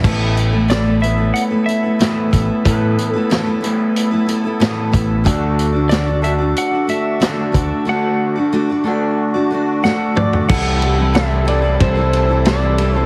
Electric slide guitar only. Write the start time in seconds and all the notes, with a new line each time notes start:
0.70 D5
1.02 E5
1.34 F#5
1.66 E5
2.66 B4
3.12 A4
5.89 D5
6.24 E5
6.58 F#5
6.90 E5
7.89 F#5
9.84 F#5
10.16 D5
10.49 F#5
11.15 E5
11.48 D5
11.81 C5
12.48 D5
12.98 C5